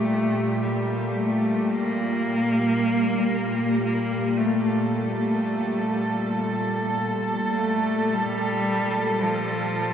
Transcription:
Already playing: A#2 G3 A3 G4
0.63 G3
1.17 A3
1.70 A#3
3.84 A#3
4.37 A3 A4
4.92 A3
7.51 A#3
7.59 A3
8.13 G3
9.20 F3

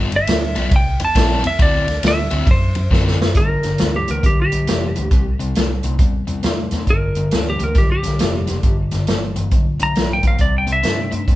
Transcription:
Already playing: G1 G3 B3 F4 A4
0.12 G1, muted overdriven electric guitar stroke, ride
0.16 E5
0.27 D2, muted overdriven electric guitar stroke, snare, ride
0.56 B1 G3 B3 F4 A4, ride
0.71 C2, muted overdriven electric guitar stroke, kick, ride
0.76 G5
1.00 E2, muted overdriven electric guitar stroke, ride
1.05 A5
1.15 A#1 C4 E4 A#4 D5, kick, snare, ride
1.44 E2 E5, muted overdriven electric guitar stroke, ride
1.59 D2 D3 C4 E4 F#4 D5, kick, ride
1.87 D2, muted overdriven electric guitar stroke, snare, ride
2.03 D2, muted overdriven electric guitar stroke, snare, ride
2.08 E5
2.31 D2 D3 C4 E4 F#4, ride
2.47 F#2, muted overdriven electric guitar stroke, kick, ride
2.51 C5
2.75 F#2, muted overdriven electric guitar stroke, ride
2.91 F#2 D3 C4 E4 F#4, kick, snare
3.08 snare
3.20 F#2, muted overdriven electric guitar stroke, snare
3.34 G1 G2 D3 A#4, kick, closed hi-hat
3.63 G1 G2 D3, snare, closed hi-hat
3.78 D2 G2 E3, snare, closed hi-hat
3.96 G4
4.08 D2 G2 E3 A#4, closed hi-hat
4.23 B1 G2 D3 G4, kick, closed hi-hat
4.42 G4
4.52 B1 G2 D3, closed hi-hat
4.67 F1 G2 E3, snare, closed hi-hat
4.95 D2 G2 E3, closed hi-hat
5.11 C2 C3 G3, kick, closed hi-hat
5.39 C2 C3 G3, closed hi-hat
5.55 C2 C3 A3, snare, closed hi-hat
5.83 C2 C3 A3, closed hi-hat
5.99 E2 C3 G3, kick, closed hi-hat
6.27 E2 C3 G3, closed hi-hat
6.43 E2 C3 A3, snare, closed hi-hat
6.71 E2 C3 A3, snare, closed hi-hat
6.87 G1 G2 D3 A#4, kick, closed hi-hat
7.15 G1 G2 D3, closed hi-hat
7.31 D2 G2 E3, snare, closed hi-hat
7.50 G4
7.59 D2 G2 E3, closed hi-hat
7.64 A#4
7.75 B1 G2 D3 G4, kick, snare, closed hi-hat
7.92 G4
8.03 B1 G2 D3, snare, closed hi-hat
8.19 F1 G2 E3, snare, closed hi-hat
8.47 F1 G2 E3, snare, closed hi-hat
8.63 G1 G2 D3, kick, closed hi-hat
8.91 G1 G2 D3, snare, closed hi-hat
9.07 G1 G2 E3, snare, closed hi-hat
9.36 G1 G2 E3, closed hi-hat
9.51 B1 G2 D3, kick, closed hi-hat
9.79 B1 G2 D3 A#5, closed hi-hat
9.95 B1 G2 E3, snare, closed hi-hat
10.13 G5
10.23 B1 G2 E3, kick, closed hi-hat
10.28 F5
10.38 C2 C3 G3 D5, kick, closed hi-hat
10.58 G5
10.67 C2 C3 G3, closed hi-hat
10.73 E5
10.83 G2 C3 A3, snare, closed hi-hat
11.11 G2 C3 A3, closed hi-hat
11.28 E2 C3 G3, kick, closed hi-hat

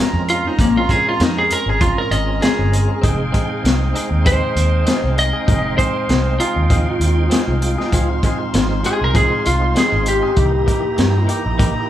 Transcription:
Already playing: G#3 C4 C#4 F4 G#4 A#4 A#5
0.13 F2
0.29 F4, closed hi-hat
0.47 D#4
0.59 A#1 A#3, kick, closed hi-hat
0.77 F4
0.89 G#4, kick, closed hi-hat
1.09 F4
1.20 F2 D#4, snare, closed hi-hat
1.38 G#4
1.51 A#4, closed hi-hat
1.66 G#1 G#4
1.81 F4, kick, closed hi-hat
1.98 A#4
2.11 G#1 D#5, closed hi-hat
2.42 G#4, snare, closed hi-hat
2.59 G1
2.73 closed hi-hat
3.02 F1 G#3 C4 D#4 G#4 D#5 F5 G5, kick, closed hi-hat
3.19 muted clean electric guitar stroke
3.32 C4 D#4 G#4, kick, closed hi-hat
3.50 muted clean electric guitar stroke
3.63 C2, muted clean electric guitar stroke, snare, closed hi-hat
3.94 C4 D#4 G#4, closed hi-hat
4.11 D#2, muted clean electric guitar stroke
4.25 C4 D#4 G#4 C5, kick, closed hi-hat
4.42 muted clean electric guitar stroke
4.55 D#2, muted clean electric guitar stroke, closed hi-hat
4.85 C4 D#4 G#4, snare, closed hi-hat
5.03 C2, muted clean electric guitar stroke
5.16 D#5, muted clean electric guitar stroke, closed hi-hat
5.33 D#4 G#4
5.47 F1 C4 D#4 G#4, kick, closed hi-hat
5.63 muted clean electric guitar stroke
5.77 C4 D#4 G#4 C5, kick, closed hi-hat
5.94 muted clean electric guitar stroke
6.09 C2, muted clean electric guitar stroke, snare, closed hi-hat
6.39 C4 D#4 F4 G#4, closed hi-hat
6.56 D#2, muted clean electric guitar stroke
6.70 C4 D#4 G#4, kick, closed hi-hat
6.88 muted clean electric guitar stroke
7.00 D#2, muted clean electric guitar stroke, closed hi-hat
7.30 C4 D#4 G#4, snare, closed hi-hat
7.47 C2, muted clean electric guitar stroke
7.61 muted clean electric guitar stroke, closed hi-hat
7.78 D#4 G#4, snare
7.90 C#2 F3 G#3 C4 D#4 F4 G#4 C5 C6, kick, closed hi-hat
8.10 muted clean electric guitar stroke
8.23 F3 G#3 C4 G#4, kick, closed hi-hat
8.40 muted clean electric guitar stroke
8.54 G#1, muted clean electric guitar stroke, snare, closed hi-hat
8.84 F3 G#3 C4 G#4, closed hi-hat
9.00 C2 A#4, muted clean electric guitar stroke
9.14 F3 G#3 C4 G#4, kick, closed hi-hat
9.32 muted clean electric guitar stroke
9.45 C2 F4, muted clean electric guitar stroke, closed hi-hat
9.75 F3 G#3 C4 G#4, snare, closed hi-hat
9.92 G#1, muted clean electric guitar stroke
10.06 G4, muted clean electric guitar stroke, closed hi-hat
10.23 G#3 C4 G#4
10.36 C2 E3 A#3 D#4 E4 G4 D#5 G5 A#5, kick, closed hi-hat
10.53 muted clean electric guitar stroke
10.66 E3 A#3 D#4 G4, kick, closed hi-hat
10.82 muted clean electric guitar stroke
10.96 G2, muted clean electric guitar stroke, snare, closed hi-hat
11.27 E3 A#3 D#4 G4, closed hi-hat
11.44 A#1, muted clean electric guitar stroke
11.58 E3 A#3 D#4 G4, kick, closed hi-hat
11.76 muted clean electric guitar stroke

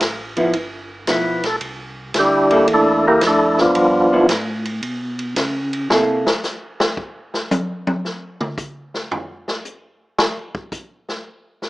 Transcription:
0.00 A1, kick, snare, hi-hat pedal, ride
0.37 F3 B3 E4, ride
0.53 G1, kick, ride
1.07 B1 F3 B3 E4, kick, snare, hi-hat pedal, ride
1.12 B4
1.44 A4, snare, ride
1.61 C2, kick, ride
2.14 D2, kick, snare, hi-hat pedal, ride
2.19 G3 D4 E4 G4
2.51 A#3 E4 A4, ride
2.68 E2, kick, ride
2.73 A3 D4 E4 A4
3.07 A#3 E4 G4 A#4
3.21 F2, kick, snare, hi-hat pedal, ride
3.27 A3 D4 E4 A4
3.58 F3 B3 D4 F4, snare
3.75 G2, kick, ride
4.12 G2 F3 B3 E4
4.29 A2, kick, snare, hi-hat pedal, ride
4.65 ride
4.83 B2, kick, ride
5.19 ride
5.36 C#3, kick, snare, hi-hat pedal, ride
5.73 ride
5.89 C3 A#3 E4 A4, snare
6.27 snare
6.43 snare, hi-hat pedal
6.80 snare
6.97 kick
7.34 snare
7.51 hi-hat pedal, high tom
7.87 high tom
8.05 snare
8.41 mid tom
8.57 kick, hi-hat pedal
8.94 snare
9.11 floor tom
9.48 snare
9.65 hi-hat pedal
10.19 snare
10.55 kick
10.72 kick, hi-hat pedal
11.09 snare
11.62 snare

